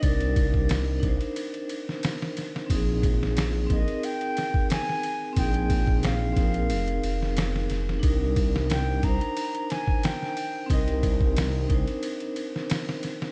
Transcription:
<<
  \new Staff \with { instrumentName = "Flute" } { \time 4/4 \key c \minor \tempo 4 = 90 d''4 r2. | r4. ees''8 g''4 aes''4 | g''4 f''2~ f''8 r8 | r4 g''8 bes''4 aes''8 g''4 |
ees''4 r2. | }
  \new Staff \with { instrumentName = "Vibraphone" } { \time 4/4 \key c \minor <d' ees' bes'>4. <d' ees' c''>2~ <d' ees' c''>8 | <c' ees' aes'>4. <c' ees' bes'>2~ <c' ees' bes'>8 | <c' ees' aes'>4. <c' ees' bes'>2~ <c' ees' bes'>8 | <d' ees' bes'>4. <d' ees' c''>2~ <d' ees' c''>8 |
<c' ees' bes'>4. <d' ees' c''>2~ <d' ees' c''>8 | }
  \new Staff \with { instrumentName = "Detuned saw bass" } { \clef bass \time 4/4 \key c \minor c,4. c,8 r2 | bes,,4. bes,,8 r2 | bes,,4. bes,,8 f,,8 f,,4 f,,8 | c,4. c,8 r2 |
c,4. c,8 r2 | }
  \new DrumStaff \with { instrumentName = "Drums" } \drummode { \time 4/4 <bd cymr>16 cymr16 <bd cymr>16 bd16 <cymr sn>8 <bd cymr>16 cymr16 cymr16 cymr16 cymr16 sn16 <cymr sn>16 sn16 <cymr sn>16 sn16 | <bd cymr>8 <bd cymr>16 sn16 <cymr sn>8 <bd cymr>16 cymr16 cymr16 cymr16 <cymr sn>16 bd16 <cymr sn>16 sn16 cymr8 | <bd cymr>16 cymr16 <bd cymr>16 bd16 <cymr sn>8 <bd cymr>16 cymr16 cymr16 cymr16 cymr16 sn16 <cymr sn>16 sn16 <cymr sn>16 sn16 | <bd cymr>8 <bd cymr>16 sn16 <cymr sn>8 <bd cymr>16 cymr16 cymr16 cymr16 <cymr sn>16 bd16 <cymr sn>16 sn16 cymr8 |
<bd cymr>16 cymr16 <bd cymr>16 bd16 <cymr sn>8 <bd cymr>16 cymr16 cymr16 cymr16 cymr16 sn16 <cymr sn>16 sn16 <cymr sn>16 sn16 | }
>>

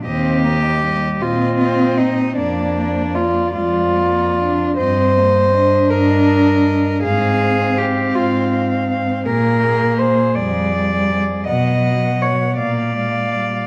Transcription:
<<
  \new Staff \with { instrumentName = "Cello" } { \time 6/8 \key ees \major \tempo 4. = 53 ees''16 ees''16 ees''16 ees''16 ees''16 ees''16 ees''16 ees''16 ees''16 ees''16 ees''16 ees''16 | d''16 d''16 d''16 d''16 d''16 d''16 d''16 d''16 d''16 d''16 d''16 d''16 | ees''16 ees''16 ees''16 ees''16 ees''16 ees''16 ees''16 ees''16 ees''16 ees''16 ees''16 ees''16 | f''16 f''16 f''16 f''16 f''16 f''16 f''16 f''16 f''16 f''16 f''16 f''16 |
aes'16 aes'16 aes'16 aes'16 aes'16 aes'16 aes'16 aes'16 aes'16 aes'16 aes'16 aes'16 | fis''16 fis''16 fis''16 fis''16 fis''16 fis''16 f''16 f''16 f''16 f''16 f''16 f''16 | }
  \new Staff \with { instrumentName = "Cello" } { \time 6/8 \key ees \major g'4. f'4 ees'8 | d'4 f'8 f'4. | c''4. bes'4. | aes'4 g'8 f'8 r4 |
bes'4 c''8 d''4. | dis''4 des''8 d''4. | }
  \new Staff \with { instrumentName = "Cello" } { \time 6/8 \key ees \major c'8 bes8 g8 c'4. | bes4. aes8 bes8 d'8 | c'8 bes8 d'2 | c'2. |
bes4. g4. | fis4. bes8 aes8 g8 | }
  \new Staff \with { instrumentName = "Cello" } { \clef bass \time 6/8 \key ees \major ees,4. bes,4. | f,4. f,4. | g,4. g,4. | aes,4. aes,4. |
bes,4. f,4. | b,4. bes,4. | }
>>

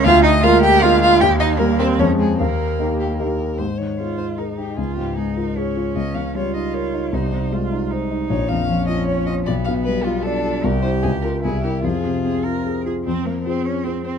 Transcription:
<<
  \new Staff \with { instrumentName = "Violin" } { \time 3/4 \key aes \major \tempo 4 = 153 f''8 ees''8 f''8 g''8 f''8 f''8 | g''8 ees''8 bes'8 c''8 des''8 aes'8 | bes'4. g'8 bes'4 | c''8 des''4 c''8 bes'8 g'8 |
aes'8 g'8 aes'8 bes'8 des''4 | ees''8 f''8 des''8 ees''8 des''4 | c''4 r2 | \key f \minor des''8 f''4 ees''8 des''8 ees''8 |
d''8 f''8 b'8 f'8 a'4 | bes'8 c''8 aes'8 bes'8 aes'8 g'8 | f'2 r4 | c''8 bes'8 c''8 des''8 c''8 c''8 | }
  \new Staff \with { instrumentName = "Cello" } { \time 3/4 \key aes \major f'8 ees'8 f'8 g'8 f'8 f'8 | g'8 ees'8 bes8 c'8 des'8 aes8 | bes2 r4 | r4 f'4 ees'4 |
f'4 ees'4 des'4~ | des'4 f'2 | ees'4 f'4 ees'4~ | \key f \minor ees'4 des'2 |
b2 d'4 | g'2 e'4 | aes'4 aes'8 bes'4 aes'8 | c'8 bes8 c'8 des'8 c'8 c'8 | }
  \new Staff \with { instrumentName = "Grand piano" } { \time 3/4 \key aes \major d,4 <aes bes bes'>4 <aes bes bes'>4 | ees,4 <g bes bes'>4 <f, aes des' aes'>4 | ees,4 <bes ees' g'>4 <bes ees' g'>4 | aes,8 ees8 aes8 ees'8 aes'8 ees'8 |
des,8 aes,8 aes8 f'8 aes'8 f'8 | des,8 des8 g8 ees'8 bes'8 ees'8 | c,8 c8 aes8 ees'8 c''8 ees'8 | \key f \minor bes,,8 f,8 f8 f'8 des''8 f'8 |
b,,8 b,8 g8 f'8 d''8 f'8 | c,8 <e' c''>8 des,8 <f' bes'>8 c,8 <e' bes'>8 | f,8 c8 c'8 f'8 aes'8 f'8 | f,4 <c' f' aes'>4 <c' f' aes'>4 | }
>>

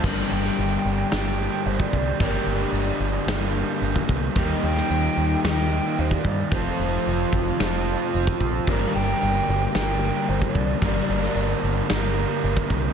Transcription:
<<
  \new Staff \with { instrumentName = "Flute" } { \time 4/4 \key g \minor \tempo 4 = 111 r8 g''4. g''4 c''16 d''8. | d''4. r2 r8 | r8 g''4. g''4 c''16 d''8. | c''4. r2 r8 |
r8 g''4. g''4 c''16 d''8. | d''4. r2 r8 | }
  \new Staff \with { instrumentName = "Overdriven electric guitar" } { \time 4/4 \key g \minor <g, d g bes d' g'>2 <g, d g bes d' g'>2 | <g, d g bes d' g'>2 <g, d g bes d' g'>2 | <ees g bes ees' g'>2 <ees g bes ees' g'>2 | <f c' f' a'>2 <f c' f' a'>2 |
<g, d g bes d' bes'>2 <g, d g bes d' bes'>2 | <g, d g bes d' bes'>2 <g, d g bes d' bes'>2 | }
  \new Staff \with { instrumentName = "Overdriven electric guitar" } { \clef bass \time 4/4 \key g \minor <g, d g bes d'>1 | <g, d g bes d'>1 | <ees g bes ees'>1 | <f, c f a c'>1 |
<g, d g bes d'>1 | <g, d g bes d'>1 | }
  \new Staff \with { instrumentName = "Picked electric bass" } { \clef bass \time 4/4 \key g \minor g,,8 g,,8 g,,8 g,,8 g,,4 g,,8 c,8 | g,,8 g,,8 g,,8 g,,8 g,,4 g,,8 c,8 | ees,8 ees,8 ees,8 ees,8 ees,4 ees,8 g,8 | f,,8 f,,8 f,,8 f,,8 f,,4 f,,8 bes,,8 |
g,,8 g,,8 g,,8 g,,8 g,,4 g,,8 c,8 | g,,8 g,,8 g,,8 g,,8 g,,4 g,,8 c,8 | }
  \new DrumStaff \with { instrumentName = "Drums" } \drummode { \time 4/4 <cymc bd>8. sn16 hho4 <hho sn>4 hho16 bd16 bd8 | <hho bd>4 hho4 <hho sn>4 hho16 bd16 bd8 | <hho bd>8. sn16 hho4 <hho sn>4 hho16 bd16 bd8 | <hho bd>4 hho8 bd8 <hho sn>4 hho16 bd16 bd8 |
<hho bd>4 hho4 <hho sn>4 hho16 bd16 bd8 | <hho bd>8. sn16 hho4 <hho sn>4 hho16 bd16 bd8 | }
>>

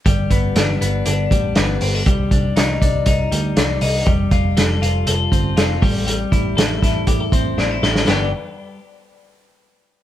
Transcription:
<<
  \new Staff \with { instrumentName = "Clean electric guitar" } { \time 4/4 \key g \mixolydian \tempo 4 = 120 g8 b8 d'8 b8 d'8 g8 b8 c'16 d'16 | g8 d'8 ees'8 d'8 ees'8 g8 d'8 ees'8 | g8 f'8 a'8 f'8 a'8 c'8 f'8 g8 | g8 e'8 a'8 e'8 g'16 a'16 c'8 d'16 e'16 a'8 |
<b d' g'>8 r2. r8 | }
  \new Staff \with { instrumentName = "Picked electric bass" } { \clef bass \time 4/4 \key g \mixolydian g,,8 g,,8 g,,8 g,,8 g,,8 a,,8 g,,8 g,,8 | c,8 c,8 c,8 c,8 c,8 d,8 c,8 c,8 | f,,8 f,,8 f,,8 f,,8 f,,8 g,,8 f,,8 a,,8~ | a,,8 a,,8 a,,8 a,,8 a,,8 a,,8 a,,8 a,,8 |
g,,8 r2. r8 | }
  \new DrumStaff \with { instrumentName = "Drums" } \drummode { \time 4/4 <hh bd>8 <hh bd>8 <hh sn>8 hh8 hh8 <hh bd>8 <hh sn>8 hho8 | <hh bd>8 <hh bd>8 <hh sn>8 <hh bd>8 <hh bd>8 hh8 <hh sn>8 hho8 | <hh bd>8 <hh bd>8 <hh sn>8 hh8 hh8 <hh bd>8 <hh sn>8 <hho bd>8 | hh8 <hh bd>8 <hh sn>8 <hh bd sn>8 <hh bd>8 <hh bd>8 sn8 sn16 sn16 |
<cymc sn>4 r4 r4 r4 | }
>>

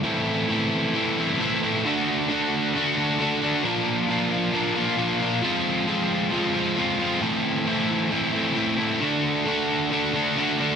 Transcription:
\new Staff \with { instrumentName = "Distorted electric guitar" } { \time 4/4 \key d \mixolydian \tempo 4 = 134 <a, e a c' e'>4 <e a c' e'>4 <e a c' e'>8 <a c' e'>8 <a, e a c' e'>8 <a c' e'>8 | <d a d' fis'>4 <d a d' fis'>4 <d a d' fis'>8 <a d' fis'>8 <d a d' fis'>8 <a d' fis'>8 | <bes, f bes d' f'>4 <f bes d' f'>4 <f bes d' f'>8 <bes d' f'>8 <bes, f bes d' f'>8 <bes d' f'>8 | <f aes c' f'>4 <f aes c' f'>4 <f aes c' f'>8 <aes c' f'>8 <f aes c' f'>8 <aes c' f'>8 |
<a, e a c' e'>4 <e a c' e'>4 <e a c' e'>8 <a c' e'>8 <a, e a c' e'>8 <a c' e'>8 | <d a d' fis'>4 <d a d' fis'>4 <d a d' fis'>8 <a d' fis'>8 <d a d' fis'>8 <a d' fis'>8 | }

